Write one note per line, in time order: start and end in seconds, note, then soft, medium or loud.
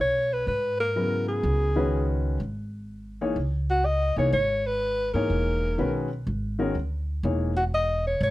0.00 0.44 B1 medium
0.00 0.35 C#5 medium
0.33 0.47 B4 medium
0.47 1.39 G#2 medium
0.47 0.77 B4 medium
0.80 1.25 A#4 medium
0.96 1.70 C#3 medium
0.96 1.69 F#3 medium
0.96 1.70 B3 soft
0.96 1.70 E4 soft
0.96 1.70 A#4 medium
1.28 2.20 G#4 medium
1.43 2.36 C#2 medium
1.76 2.37 D#3 medium
1.76 2.37 G#3 medium
1.76 2.37 C#4 medium
1.76 2.37 F#4 medium
1.76 2.37 B4 medium
2.40 3.33 G#1 medium
3.21 3.36 E3 medium
3.21 3.36 A#3 medium
3.21 3.36 D#4 medium
3.21 3.36 G#4 medium
3.21 3.36 C#5 medium
3.36 4.13 C#2 medium
3.70 3.87 F#4 medium
3.85 4.17 D#5 loud
4.16 4.32 C2 medium
4.16 4.32 E3 medium
4.16 4.32 A#3 medium
4.16 4.32 D#4 medium
4.16 4.32 G#4 medium
4.16 4.32 C#5 medium
4.16 4.33 C#5 medium
4.33 5.09 G#1 medium
4.33 4.68 C#5 loud
4.67 5.13 B4 loud
5.14 5.29 G#2 medium
5.14 5.76 E3 medium
5.14 5.76 A#3 medium
5.14 5.76 D#4 medium
5.14 5.76 G#4 medium
5.14 6.06 A#4 medium
5.14 5.76 C#5 medium
5.30 5.75 E1 medium
5.78 6.23 B1 medium
5.78 6.07 D#3 medium
5.78 6.07 G#3 medium
5.78 6.08 C#4 medium
5.78 6.08 F#4 medium
5.78 6.08 B4 medium
6.27 6.72 G#1 medium
6.59 6.74 D#3 medium
6.59 6.74 G#3 medium
6.59 6.74 C#4 medium
6.59 6.74 F#4 medium
6.59 6.74 A#4 medium
6.75 7.20 D2 medium
7.23 8.16 E1 medium
7.23 7.53 E3 medium
7.23 7.53 A#3 medium
7.23 7.53 D#4 soft
7.23 7.53 G#4 soft
7.23 7.53 C#5 medium
7.57 7.64 F#4 medium
7.74 8.03 D#5 medium
8.07 8.21 C#5 medium
8.21 8.30 G#1 medium
8.21 8.30 C#5 medium